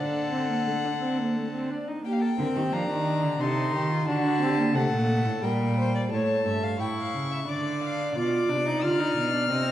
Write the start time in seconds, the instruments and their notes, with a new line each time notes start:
Already playing: cello D3, viola D4, violin A4 F#5
0.31 viola C4
0.49 viola A#3
0.66 viola A3
0.84 viola D4
1.01 viola C4
1.18 viola A#3
1.35 viola A3
1.53 viola C4
1.70 viola D4
1.88 viola D#4
2.05 viola A#3, violin G4 G5
2.12 violin F5
2.19 violin A4 G5
2.39 cello D3, viola C4, violin A#4
2.56 cello D#3, violin G4
2.73 cello F3, viola D4, violin A#5
2.89 cello D#3
3.23 cello D3
3.40 cello C3, viola D#4, violin A4 C6
3.74 cello D#3, violin G4
3.92 violin F4
4.07 cello D3, viola D4, violin F#4 A5
4.24 viola D4
4.41 viola C4, violin G4
4.58 viola A#3
4.74 cello C3, viola A3, violin A4 F#5
4.91 cello A#2
5.25 cello A2
5.42 cello A#2, viola G3, violin A#4 G5
5.79 violin C5
5.95 violin D5
6.11 cello A2, viola A3, violin C#5 A5
6.45 cello G2, violin E5
6.63 violin F5
6.80 cello A2, viola E4, violin G5 C#6
6.98 violin F5
7.15 cello C#3
7.31 violin E5
7.48 cello D3, viola D4, violin D5 D6
7.83 violin F5
8.15 cello B2, viola F4, violin D5 D6
8.49 cello C3, viola D4
8.66 viola D#4
8.83 cello D3, viola F4, violin F6
8.99 viola D#4
9.17 cello B2
9.33 viola D4
9.50 cello C3, viola C4, violin D#5